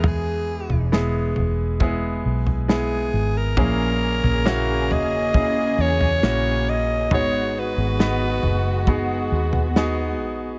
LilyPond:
<<
  \new Staff \with { instrumentName = "Alto saxophone" } { \time 4/4 \key e \lydian \tempo 4 = 68 gis'4 r2 gis'8. ais'16~ | ais'4. dis''4 cis''4 dis''8 | cis''8 b'2 r4. | }
  \new Staff \with { instrumentName = "Grand piano" } { \time 4/4 \key e \lydian <gis b e' gis'>4 <gis b e' gis'>4 <gis b e' gis'>4 <gis b e' gis'>4 | <ais cis' e' gis'>4 <ais cis' e' fis'>4 <ais cis' e' gis'>4 <ais cis' e' fis'>4 | <b dis' fis' gis'>4 <b dis' fis' b'>4 <b dis' fis' gis'>4 <b dis' fis' gis'>4 | }
  \new Staff \with { instrumentName = "Grand piano" } { \clef bass \time 4/4 \key e \lydian e4 r2. | ais,4. r2 r8 | gis,4. r2 r8 | }
  \new Staff \with { instrumentName = "String section" } { \time 4/4 \key e \lydian r1 | <cis ais gis'>1 | <gis b fis'>1 | }
  \new Staff \with { instrumentName = "Fingered electric bass" } { \clef bass \time 4/4 \key e \lydian e,8. e,,8. e,,4 b,,4 gis,,8 | ais,,8. ais,,8. e,,4 e,8 ais,,4 | gis,,8. gis,,8. fis,,4 dis,4 ais,,8 | }
  \new DrumStaff \with { instrumentName = "Drums" } \drummode { \time 4/4 tomfh8. tomfh16 sn8 tomfh8 <bd tomfh>8. tomfh16 sn4 | <bd tomfh>8. tomfh16 sn8 tomfh8 <bd tomfh>8. tomfh16 sn4 | tomfh4 sn8 tomfh8 <bd tomfh>8. tomfh16 sn4 | }
>>